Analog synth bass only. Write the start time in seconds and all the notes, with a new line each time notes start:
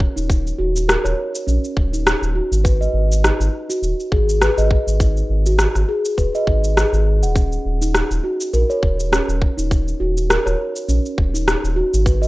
0.17 D#1
0.59 D#1
1.05 D#1
1.47 A#1
1.77 D#1
2.22 D#1
2.52 G#1
2.94 G#1
3.40 G#1
3.82 D#1
4.12 G#1
4.58 G#1
4.87 G#1
5.30 G#1
5.76 G#1
6.18 D#1
6.47 G#1
6.93 G#1
7.22 D#1
7.65 D#1
8.11 D#1
8.54 A#1
8.83 D#1
9.29 D#1
9.58 D#1
10.00 D#1
10.46 D#1
10.89 A#1
11.18 D#1
11.64 D#1
11.94 G#1